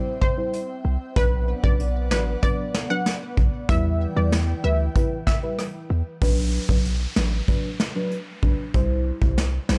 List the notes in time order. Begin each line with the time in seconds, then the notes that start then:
Already playing: G3 C4 E4 C5 E5 G5
0.21 C5, kick
0.37 G3 E4 C5
0.53 closed hi-hat
0.85 C2
1.16 B1 F#3 B3 D4 B4 D5 F#5, kick, closed hi-hat
1.63 B1 F#3 D4 B4 D5, kick
1.80 closed hi-hat
2.11 A1 F#3 D4 B4, snare
2.42 F#3 D4 B4 D5, kick, closed hi-hat
2.74 snare
2.90 F#3 D4 B4 F#5
3.06 snare, closed hi-hat
3.37 B1, kick
3.69 E2 E3 G3 E4 B4 E5 G5, kick, closed hi-hat
4.16 E2 G3 E4 B4 D5
4.32 cross-stick, snare, closed hi-hat
4.64 D2 G3 E4 B4 E5
4.95 G3 E4 B4, kick, closed hi-hat
5.27 E5, kick, snare
5.42 G3 E4 B4
5.59 cross-stick, closed hi-hat
5.90 E2
6.21 B1 F#3 D4 B4, kick, closed hi-hat, downlifter
6.69 B1 F#3 D4 B4, kick
6.85 closed hi-hat
7.16 A1 F#3 D4 B4, snare
7.48 F#3 D4 B4, kick, closed hi-hat
7.80 snare
7.95 F#3 D4 B4
8.11 closed hi-hat
8.43 B1 F#3 D4 B4, kick
8.74 C2 G3 E4 C5, kick, closed hi-hat
9.22 C2 G3 E4 C5, kick
9.38 snare, closed hi-hat
9.69 B1 G3 E4 C5, snare